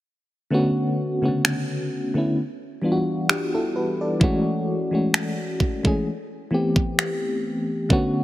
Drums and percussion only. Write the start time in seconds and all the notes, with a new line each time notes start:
1.45 finger snap
3.29 finger snap
4.21 kick
5.14 finger snap
5.60 kick
5.85 kick
6.76 kick
6.99 finger snap
7.90 kick